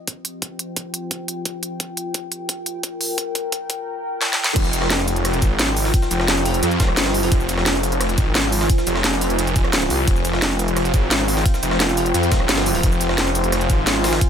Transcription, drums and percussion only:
0.08 kick, closed hi-hat
0.25 closed hi-hat
0.42 kick, closed hi-hat
0.59 closed hi-hat
0.76 kick, closed hi-hat
0.94 closed hi-hat
1.11 kick, closed hi-hat
1.28 closed hi-hat
1.45 kick, closed hi-hat
1.63 closed hi-hat
1.80 kick, closed hi-hat
1.97 closed hi-hat
2.14 kick, closed hi-hat
2.32 closed hi-hat
2.49 kick, closed hi-hat
2.66 closed hi-hat
2.83 kick, closed hi-hat
3.01 open hi-hat
3.18 kick, closed hi-hat
3.35 kick, closed hi-hat
3.52 kick, closed hi-hat
3.70 kick, closed hi-hat
4.21 snare
4.33 snare
4.44 snare
4.56 kick, closed hi-hat, crash, ride
4.64 shaker
4.73 closed hi-hat, ride, shaker
4.82 cross-stick, snare
4.90 snare, closed hi-hat, ride
4.99 cross-stick, shaker
5.08 closed hi-hat, ride, shaker
5.16 closed hi-hat
5.25 cross-stick, closed hi-hat, ride
5.33 closed hi-hat
5.42 kick, closed hi-hat, ride, shaker
5.59 snare, closed hi-hat, ride, shaker
5.77 open hi-hat, ride, shaker
5.85 snare
5.94 kick, closed hi-hat, ride
6.02 snare, shaker
6.11 closed hi-hat, ride, shaker
6.20 cross-stick, snare
6.28 snare, closed hi-hat, ride
6.37 shaker
6.45 closed hi-hat, open hi-hat, shaker
6.54 closed hi-hat
6.63 closed hi-hat, ride
6.71 closed hi-hat
6.80 kick, snare, closed hi-hat, ride, shaker
6.89 cross-stick
6.97 snare, closed hi-hat, open hi-hat, shaker
7.06 snare, ride
7.14 open hi-hat, shaker
7.23 open hi-hat
7.32 kick, closed hi-hat, ride
7.40 shaker
7.49 closed hi-hat, ride, shaker
7.57 cross-stick, snare
7.66 snare, closed hi-hat, ride
7.75 cross-stick, shaker
7.83 closed hi-hat, ride, shaker
7.92 closed hi-hat
8.01 cross-stick, closed hi-hat, ride
8.09 closed hi-hat
8.18 kick, closed hi-hat, ride, shaker
8.35 snare, closed hi-hat, ride, shaker
8.52 open hi-hat, ride, shaker
8.61 snare
8.70 kick, closed hi-hat, ride
8.78 snare, shaker
8.87 closed hi-hat, ride, shaker
8.96 cross-stick, snare
9.04 snare, closed hi-hat, ride
9.13 shaker
9.21 closed hi-hat, open hi-hat, shaker
9.30 closed hi-hat
9.39 closed hi-hat, ride
9.47 closed hi-hat
9.56 kick, closed hi-hat, ride, shaker
9.64 cross-stick, ride
9.73 snare, closed hi-hat, ride, shaker
9.82 closed hi-hat
9.90 open hi-hat, ride, shaker
10.07 kick, closed hi-hat, ride
10.16 shaker
10.25 closed hi-hat, ride, shaker
10.33 cross-stick, snare
10.42 snare, closed hi-hat, ride
10.51 cross-stick, shaker
10.59 closed hi-hat, ride, shaker
10.68 closed hi-hat
10.76 cross-stick, closed hi-hat, ride
10.85 closed hi-hat
10.94 kick, closed hi-hat, ride, shaker
11.11 snare, closed hi-hat, ride, shaker
11.28 open hi-hat, ride, shaker
11.37 snare
11.46 kick, closed hi-hat, ride
11.54 snare, shaker
11.63 closed hi-hat, ride, shaker
11.71 cross-stick, snare
11.80 snare, closed hi-hat, ride
11.89 shaker
11.97 closed hi-hat, open hi-hat, shaker
12.06 closed hi-hat
12.14 closed hi-hat, ride
12.23 closed hi-hat
12.32 kick, snare, closed hi-hat, ride, shaker
12.40 cross-stick
12.49 snare, closed hi-hat, open hi-hat, shaker
12.58 snare, ride
12.66 open hi-hat, shaker
12.75 open hi-hat
12.83 kick, closed hi-hat, ride
12.92 shaker
13.01 closed hi-hat, ride, shaker
13.09 cross-stick, snare
13.18 snare, closed hi-hat, ride
13.27 cross-stick, shaker
13.35 closed hi-hat, ride, shaker
13.44 closed hi-hat
13.52 cross-stick, closed hi-hat, ride
13.61 closed hi-hat
13.70 kick, closed hi-hat, ride, shaker
13.87 snare, closed hi-hat, ride, shaker
14.04 snare, open hi-hat, ride, shaker
14.13 snare, ride
14.21 kick, closed hi-hat, ride

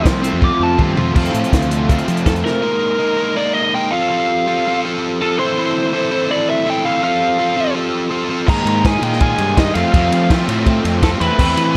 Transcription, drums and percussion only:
0.05 kick, snare, closed hi-hat
0.24 closed hi-hat
0.42 kick, high tom
0.79 kick, mid tom
0.97 floor tom
1.16 kick, crash
1.25 closed hi-hat
1.35 closed hi-hat
1.44 closed hi-hat
1.53 kick, snare, closed hi-hat
1.62 closed hi-hat
1.71 closed hi-hat
1.89 kick, closed hi-hat
1.99 closed hi-hat
2.08 closed hi-hat
2.17 closed hi-hat
2.26 kick, snare, closed hi-hat
2.36 closed hi-hat
2.46 snare
8.48 kick, crash
8.67 ride
8.85 kick, snare, ride
9.03 ride
9.13 snare
9.21 kick, ride
9.38 ride
9.57 kick, snare, ride
9.75 ride
9.94 kick, ride
10.12 ride
10.30 kick, snare, ride
10.49 ride
10.66 kick, ride
10.85 ride
11.03 kick, snare, ride
11.21 ride
11.39 kick, crash
11.57 ride

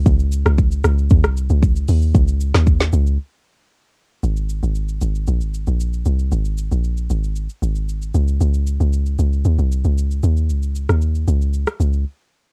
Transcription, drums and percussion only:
0.06 kick, shaker
0.19 shaker
0.32 shaker
0.46 cross-stick, shaker
0.58 kick, shaker
0.71 shaker
0.84 cross-stick, shaker
0.98 shaker
1.10 kick, shaker
1.24 cross-stick, shaker
1.37 shaker
1.49 shaker
1.62 kick, shaker
1.76 shaker
1.88 open hi-hat, shaker
2.02 shaker
2.15 kick, shaker
2.28 shaker
2.40 shaker
2.54 cross-stick, snare, shaker
2.67 kick, shaker
2.80 snare, shaker
2.93 shaker
3.07 shaker
4.23 shaker
4.37 shaker
4.49 shaker
4.63 shaker
4.75 shaker
4.89 shaker
5.01 shaker
5.15 shaker
5.27 shaker
5.41 shaker
5.54 shaker
5.67 shaker
5.80 shaker
5.93 shaker
6.06 shaker
6.19 shaker
6.32 shaker
6.45 shaker
6.58 shaker
6.72 shaker
6.84 shaker
6.97 shaker
7.10 shaker
7.24 shaker
7.36 shaker
7.49 shaker
7.63 shaker
7.75 shaker
7.89 shaker
8.02 shaker
8.14 shaker
8.28 shaker
8.41 shaker
8.54 shaker
8.67 shaker
8.80 shaker
8.93 shaker
9.06 shaker
9.19 shaker
9.33 shaker
9.45 shaker
9.58 shaker
9.72 shaker
9.84 shaker
9.98 shaker
10.11 shaker
10.23 shaker
10.37 shaker
10.49 shaker
10.63 shaker
10.75 shaker
10.89 cross-stick, shaker
11.02 shaker
11.15 shaker
11.28 shaker
11.42 shaker
11.53 shaker
11.67 cross-stick, shaker
11.80 shaker
11.93 shaker

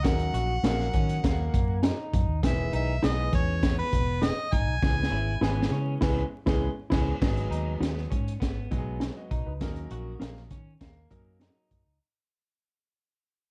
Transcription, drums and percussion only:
0.05 kick, snare, closed hi-hat
0.20 closed hi-hat
0.34 closed hi-hat
0.64 snare, closed hi-hat
0.79 snare
0.93 kick, closed hi-hat
1.09 closed hi-hat
1.24 kick, snare, closed hi-hat
1.54 kick, closed hi-hat
1.83 snare, closed hi-hat
2.14 kick, closed hi-hat
2.43 kick, snare, closed hi-hat
2.73 closed hi-hat
3.04 snare, closed hi-hat
3.33 kick, closed hi-hat
3.63 kick, snare, closed hi-hat
3.93 kick, closed hi-hat
4.23 snare, closed hi-hat
4.53 kick, closed hi-hat
4.82 kick, snare
5.03 snare
5.43 snare
5.63 snare
6.02 kick, snare, crash
6.47 kick, snare
6.92 kick, snare, crash
7.22 kick, snare, crash
7.37 closed hi-hat
7.52 closed hi-hat
7.83 snare, closed hi-hat
7.98 snare
8.12 kick, closed hi-hat
8.28 closed hi-hat
8.42 kick, snare, closed hi-hat
8.72 kick, closed hi-hat
9.01 snare, closed hi-hat
9.31 kick, closed hi-hat
9.61 kick, snare, closed hi-hat
9.76 closed hi-hat
9.91 closed hi-hat
10.21 snare, closed hi-hat
10.37 snare
10.50 kick, closed hi-hat
10.81 kick, snare, closed hi-hat
11.11 kick, closed hi-hat
11.41 snare, closed hi-hat
11.71 kick, closed hi-hat

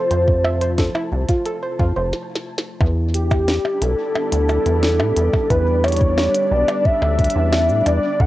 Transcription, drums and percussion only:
0.11 closed hi-hat
0.28 kick
0.44 percussion blips
0.61 closed hi-hat
0.78 kick, snare, closed hi-hat
0.95 percussion blips
1.29 kick, closed hi-hat
1.46 closed hi-hat
1.79 kick
2.13 snare
2.35 snare
2.58 snare
2.81 kick, percussion blips
3.14 closed hi-hat
3.31 kick, percussion blips, shaker
3.48 snare, closed hi-hat
3.65 percussion blips
3.82 closed hi-hat
4.15 percussion blips
4.32 closed hi-hat
4.49 percussion blips, shaker
4.66 closed hi-hat
4.83 snare
5.00 percussion blips
5.17 closed hi-hat
5.33 kick, percussion blips
5.50 kick, closed hi-hat
5.84 closed hi-hat, percussion blips
5.88 closed hi-hat
5.92 closed hi-hat
5.97 closed hi-hat
6.01 kick, shaker
6.18 snare, percussion blips
6.35 closed hi-hat
6.68 closed hi-hat, percussion blips
6.85 kick
7.02 percussion blips
7.19 kick, closed hi-hat
7.24 closed hi-hat
7.30 closed hi-hat
7.53 snare, closed hi-hat, percussion blips
7.69 shaker
7.86 closed hi-hat, percussion blips
8.20 kick

